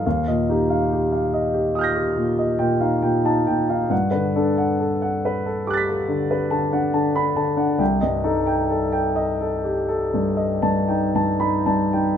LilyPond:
<<
  \new Staff \with { instrumentName = "Grand piano" } { \time 9/8 \key c \lydian \tempo 4. = 46 << { r2 <ees''' f''' g''' bes'''>2~ <ees''' f''' g''' bes'''>8 | r2 <d''' fis''' a''' b'''>2~ <d''' fis''' a''' b'''>8 | r1 r8 | } \\ { f''16 ees''16 g'16 f''16 g'16 f''16 ees''16 g'16 f'16 g'16 bes,16 ees''16 g''16 f''16 g''8 g''16 f''16 | fis''16 b'16 a'16 fis''16 a'16 fis''16 b'16 a'16 g'16 a'16 d16 b'16 a''16 fis''16 a''8 a''16 fis''16 | g''16 ees''16 a'16 g''16 a'16 g''16 ees''16 a'16 g'16 a'16 g,16 ees''16 a''16 g''16 a''8 a''16 g''16 | } >> }
  \new Staff \with { instrumentName = "Grand piano" } { \clef bass \time 9/8 \key c \lydian ees,16 bes,16 ees'8 r2 bes,16 ees'16 bes,16 <ees' a''>16 bes,16 ees'16 | g,16 d16 d'8 r2 d16 d'16 d16 <d' b''>16 d16 d'16 | c,16 g,16 ees'8 r2 g,16 ees'16 g,16 <ees' b''>16 g,16 ees'16 | }
>>